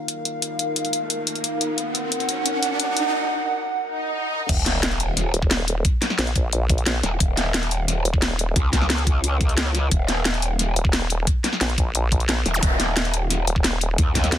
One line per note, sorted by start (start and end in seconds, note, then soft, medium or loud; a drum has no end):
0.00 4.45 D#4 medium
0.00 4.45 A#4 medium
0.00 1.75 F5 medium
0.00 riser medium
0.08 closed hi-hat loud
0.25 closed hi-hat medium
0.42 closed hi-hat medium
0.59 closed hi-hat medium
0.76 closed hi-hat loud
0.85 closed hi-hat soft
0.93 closed hi-hat medium
1.10 closed hi-hat medium
1.27 closed hi-hat medium
1.35 closed hi-hat soft
1.44 closed hi-hat loud
1.61 closed hi-hat medium
1.78 4.46 F#5 medium
1.78 closed hi-hat medium
1.95 closed hi-hat medium
2.12 closed hi-hat loud
2.20 closed hi-hat soft
2.29 closed hi-hat medium
2.46 closed hi-hat medium
2.63 closed hi-hat medium
2.80 closed hi-hat medium
2.97 closed hi-hat medium
3.81 swell medium
4.49 5.33 D#1 loud
4.49 kick loud
4.49 closed hi-hat loud
4.49 crash loud
4.49 sub drop medium
4.66 snare soft
4.66 closed hi-hat medium
4.83 snare loud
4.83 closed hi-hat loud
4.92 closed hi-hat soft
5.00 closed hi-hat medium
5.17 snare soft
5.17 closed hi-hat medium
5.34 5.83 D#1 loud
5.34 closed hi-hat medium
5.42 kick loud
5.51 snare loud
5.51 closed hi-hat loud
5.68 closed hi-hat medium
5.85 kick loud
5.85 closed hi-hat medium
6.02 snare soft
6.02 closed hi-hat medium
6.10 snare soft
6.19 7.02 A#1 medium
6.19 snare loud
6.19 closed hi-hat loud
6.27 closed hi-hat soft
6.36 kick loud
6.36 closed hi-hat medium
6.53 closed hi-hat medium
6.70 kick loud
6.70 closed hi-hat medium
6.78 closed hi-hat soft
6.86 snare loud
6.86 closed hi-hat medium
7.03 7.19 D#1 medium
7.03 snare soft
7.03 closed hi-hat medium
7.20 8.04 D#1 loud
7.20 kick loud
7.20 closed hi-hat medium
7.37 snare soft
7.37 closed hi-hat medium
7.54 snare loud
7.54 closed hi-hat medium
7.63 closed hi-hat soft
7.71 closed hi-hat medium
7.88 snare soft
7.88 closed hi-hat medium
8.05 8.55 D#1 loud
8.05 closed hi-hat medium
8.14 kick loud
8.22 snare loud
8.22 closed hi-hat medium
8.39 closed hi-hat medium
8.56 9.90 C#2 loud
8.56 kick loud
8.56 closed hi-hat medium
8.73 kick medium
8.73 snare soft
8.73 closed hi-hat medium
8.81 snare soft
8.90 snare loud
8.90 closed hi-hat medium
8.98 closed hi-hat soft
9.07 kick loud
9.07 closed hi-hat medium
9.24 closed hi-hat medium
9.41 kick loud
9.41 closed hi-hat medium
9.49 closed hi-hat soft
9.58 snare loud
9.58 closed hi-hat medium
9.75 snare soft
9.75 closed hi-hat medium
9.91 10.75 D#1 loud
9.91 kick loud
9.91 closed hi-hat medium
10.08 snare soft
10.08 closed hi-hat medium
10.25 snare loud
10.25 closed hi-hat medium
10.34 closed hi-hat soft
10.42 closed hi-hat medium
10.59 snare soft
10.59 closed hi-hat medium
10.76 11.26 D#1 loud
10.76 closed hi-hat medium
10.85 kick loud
10.93 snare loud
10.93 closed hi-hat medium
11.10 closed hi-hat medium
11.27 kick loud
11.27 closed hi-hat medium
11.44 snare soft
11.44 closed hi-hat medium
11.53 snare soft
11.61 12.44 A#1 loud
11.61 snare loud
11.61 closed hi-hat loud
11.70 closed hi-hat soft
11.78 kick loud
11.78 closed hi-hat medium
11.95 closed hi-hat medium
12.12 kick loud
12.12 closed hi-hat medium
12.20 closed hi-hat soft
12.29 snare loud
12.29 closed hi-hat medium
12.46 12.61 D#1 loud
12.46 snare soft
12.46 closed hi-hat medium
12.54 zap medium
12.63 13.46 D#1 loud
12.63 kick loud
12.63 closed hi-hat loud
12.80 snare soft
12.80 closed hi-hat medium
12.97 snare loud
12.97 closed hi-hat loud
13.05 closed hi-hat soft
13.14 closed hi-hat medium
13.30 snare soft
13.30 closed hi-hat medium
13.47 13.97 D#1 loud
13.47 closed hi-hat medium
13.56 kick loud
13.64 snare loud
13.64 closed hi-hat loud
13.81 closed hi-hat medium
13.98 14.31 D#2 loud
13.98 kick loud
13.98 closed hi-hat medium
14.15 kick medium
14.15 snare soft
14.15 closed hi-hat medium
14.24 snare soft
14.24 closed hi-hat soft
14.32 14.38 D#2 loud
14.32 snare loud
14.32 closed hi-hat loud